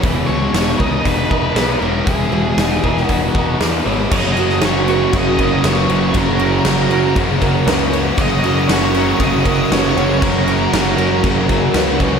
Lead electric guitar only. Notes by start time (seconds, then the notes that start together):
0.27 C#5
0.54 C#5
0.79 D#5
1.05 B4
1.79 A#4
2.05 G#4
3.05 F#4
4.12 D#5
4.65 C#5
4.90 C#5
5.16 D#5
5.68 C#5
6.17 A#4
6.67 A#4
8.18 D#5
8.69 C#5
8.93 C#5
9.19 D#5
9.72 C#5
10.22 A#4
10.74 A#4